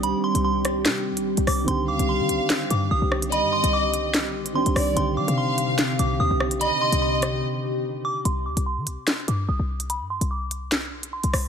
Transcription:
<<
  \new Staff \with { instrumentName = "Synth bell" } { \time 4/4 \key c \minor \tempo 4 = 146 b''8 c'''8 c'''2~ c'''8 d'''8 | c'''8 d'''8 c'''4. d'''8 ees'''4 | b''8 c'''8 d'''2 c'''4 | c'''8 d'''8 c'''4. d'''8 ees'''4 |
b''8 c'''8 c'''2~ c'''8 d'''8 | c'''8 d'''8 c'''4. d'''8 ees'''4 | b''8 c'''8 d'''2 c'''4 | }
  \new Staff \with { instrumentName = "Violin section" } { \time 4/4 \key c \minor r1 | r8 f''2~ f''8 r4 | ees''2 r4. d''8 | r8 f''2~ f''8 r4 |
ees''2 r2 | r1 | r1 | }
  \new Staff \with { instrumentName = "Ambient pad" } { \time 4/4 \key c \minor <g c' g'>1~ | <g c' g'>1~ | <g c' g'>1 | <c c' g'>1~ |
<c c' g'>1 | r1 | r1 | }
  \new Staff \with { instrumentName = "Synth keys" } { \time 4/4 \key c \minor <ees c' d' g'>1 | <d ees c' g'>1~ | <d ees c' g'>2. <ees c' d' g'>4 | <d ees c' g'>1~ |
<d ees c' g'>1 | r1 | r1 | }
  \new Staff \with { instrumentName = "808-style bass" } { \clef bass \time 4/4 \key c \minor c,16 r8 c,4~ c,16 c8~ c32 c,8~ c,32 c,16 c,8 | c,8 d,16 c,8 ees16 c,16 r8. g,8 c,16 c,8.~ | c,16 g,8 c,4.~ c,16 b,,8. c,16 c,8 | c,8 g16 c4 r8. c,8 ees,16 c,8 b,,16 |
c,16 r8 c,4~ c,16 r2 | c,8 d,16 c,8 ees16 c,16 r8. g,8 c,16 c,8.~ | c,16 g,8 c,4.~ c,16 b,,8. c,16 c,8 | }
  \new DrumStaff \with { instrumentName = "Drums" } \drummode { \time 4/4 hh8. hh16 r8 <hh ss>8 <hc hh sn>8. hh16 r16 hh16 <hho ss>8 | hh8. hh16 r8 hh8 <hc hh sn>8 hh8 r8 ss16 hh16 | hh8. hh16 r8 hh8 <hc hh sn>8. hh16 r16 hh16 <hho ss>8 | hh8. hh16 r8 hh8 <hc hh sn>8 hh8 r8 ss16 hh16 |
hh8. hh16 r8 <hh ss>8 r4 r4 | hh8. hh16 r8 hh8 <hc hh sn>8 hh8 r8. hh16 | hh8. hh16 r8 hh8 <hc hh sn>8. hh16 r16 hh16 <hho ss>8 | }
>>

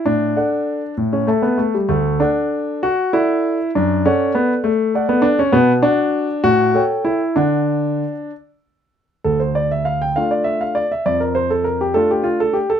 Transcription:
\new Staff \with { instrumentName = "Grand piano" } { \time 6/8 \key d \major \tempo 4. = 66 << { a,8 <a' d'' fis''>4 a,8 <a' e'' a''>4 | d,8 <a' d'' fis''>4. <a' d'' fis''>4 | fis,8 <a' d'' fis''>4. <a' d'' fis''>4 | b,8 <fis' d'' fis''>4 a,8 <a' cis'' g''>4 |
<d d'' fis''>4. r4. | \key d \minor d,4. <a d' f'>4. | f,4. <a d' f'>4. | } \\ { d'4. r16 cis'16 a16 b16 a16 g16 | a8 d'4 fis'8 e'4 | d'8 cis'8 b8 a8. b16 d'16 cis'16 | b8 d'4 fis'4 e'8 |
d'2~ d'8 r8 | a'16 c''16 d''16 e''16 f''16 g''16 f''16 d''16 e''16 f''16 d''16 e''16 | d''16 bes'16 c''16 a'16 bes'16 g'16 a'16 g'16 f'16 a'16 g'16 a'16 | } >> }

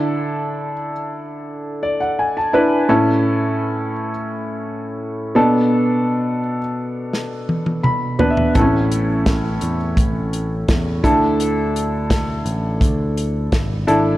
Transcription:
<<
  \new Staff \with { instrumentName = "Grand piano" } { \time 4/4 \key d \lydian \tempo 4 = 85 << { d4 r4. d''16 fis''16 gis''16 a''8. | a,4. r2 b,8~ | b,4 r2 \tuplet 3/2 { b''4 e''8 } | a,4. r2 d8~ |
d4 r2. | } \\ { <d' e' a'>4 r2 r8 <d' e' b'>8 | <cis' e' a'>4. r2 <b d' a'>8~ | <b d' a'>4 r2 r8 <b d' b'>8 | <c' cis' e' a'>4. r2 <d' e' a'>8~ |
<d' e' a'>4 r2 r8 <d' e' a'>8 | } >> }
  \new Staff \with { instrumentName = "Picked electric bass" } { \clef bass \time 4/4 \key d \lydian r1 | r1 | r1 | a,,4. e,8 a,,4 e,8 d,8~ |
d,4. a,,8 d,4 gis,,8 gis,,8 | }
  \new DrumStaff \with { instrumentName = "Drums" } \drummode { \time 4/4 r4 r4 r4 r4 | r4 r4 r4 r4 | r4 r4 sn8 tommh16 tommh16 toml8 tomfh16 tomfh16 | <hh bd>8 hh8 <hh bd sn>8 hh8 <hh bd>8 hh8 <hh bd sn>8 <hh bd>8 |
hh8 hh8 <hh bd sn>8 hh8 <hh bd>8 hh8 <hh bd sn>8 hh8 | }
>>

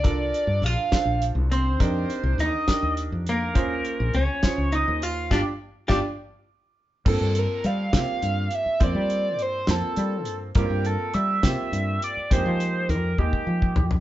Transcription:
<<
  \new Staff \with { instrumentName = "Analog synth lead" } { \time 6/8 \key g \phrygian \tempo 4. = 69 d''4 f''4 r8 c''8~ | c''4 ees''4 r8 bes'8~ | bes'4 des''4 ees''8 f''8 | d''8 r8 d''8 r4. |
a'8 bes'8 f''4. e''8 | d''4 c''8 a'4 r8 | g'8 a'8 e''4. d''8 | c''4 bes'8 g'4 r8 | }
  \new Staff \with { instrumentName = "Grand piano" } { \time 6/8 \key g \phrygian <d' f' a' bes'>4. <d' f' a' c''>4. | <d' ees' g' bes'>4. <d' ees' g' bes'>4. | <des' f' aes' c''>4. <des' f' aes' c''>4. | <d' f' g'>8 r8 <d' f' g'>8 r4. |
<bes c' f' a'>4. <bes c' f' g'>4. | <bes c' f' c''>4. <bes c' f' c''>4. | <bes c' f' bes'>4. <bes c' f' g'>4. | <aes bes ees' g'>4. <aes bes ees' g'>4. | }
  \new Staff \with { instrumentName = "Hollow-body jazz guitar" } { \time 6/8 \key g \phrygian d'4 f'4 r8 c'8~ | c'4 ees'4 r8 bes8~ | bes4 des'4 ees'8 f'8 | <d' f' g'>8 r8 <d' f' g'>8 r4. |
r2. | r2. | r2. | r2. | }
  \new Staff \with { instrumentName = "Fretless electric bass" } { \clef bass \time 6/8 \key g \phrygian c,8 r16 g,16 bes,,16 r8 bes,,8 c,8. | f,8 r16 c,16 ees,16 r8 ees,8 f,8. | ees,8 r16 bes,,16 des,16 r8 des,8 ees,8. | g,,16 r8. g,,16 r4. r16 |
g,16 g,8 r16 g8 c16 r16 g,8 r8 | f,16 g8. g,8 f,16 r16 g8 g,8 | g,16 g,8 r16 g8 c16 r16 g,8 r8 | f,16 f8. f,8 ees,16 r16 f8 f,8 | }
  \new DrumStaff \with { instrumentName = "Drums" } \drummode { \time 6/8 <hh bd>8 hh8 hh8 <hh bd sn>8 hh8 hh8 | <hh bd>8 hh8 hh8 <hh bd sn>8 hh8 hh8 | <hh bd>8 hh8 hh8 <hh bd sn>8 hh8 hh8 | <bd sn>4 <bd sn>8 r4. |
<cymc bd>8 hh8 hh8 <hh bd sn>8 hh8 hh8 | <hh bd>8 hh8 hh8 <hh sn>8 hh8 hh8 | <hh bd>8 hh8 hh8 <hh bd sn>8 hh8 hh8 | <hh bd>8 hh8 hh8 bd16 bd8 bd16 tomfh16 tomfh16 | }
>>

